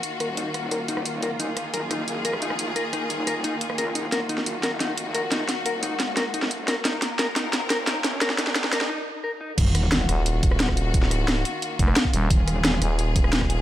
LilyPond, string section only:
\new Staff \with { instrumentName = "String section" } { \time 4/4 \key ees \minor \tempo 4 = 176 << { ges'1 | aes'1~ | aes'1 | ges'1~ |
ges'1 | bes'1~ | bes'2 r2 | ges'1~ |
ges'1 | aes'1 | } \\ { <ees bes f'>1~ | <ees bes f'>1~ | <ees bes f'>1~ | <ees bes f'>1~ |
<ees bes f'>1~ | <ees bes f'>1~ | <ees bes f'>2 r2 | <ees bes f'>1~ |
<ees bes f'>1~ | <ees bes f'>1 | } >> }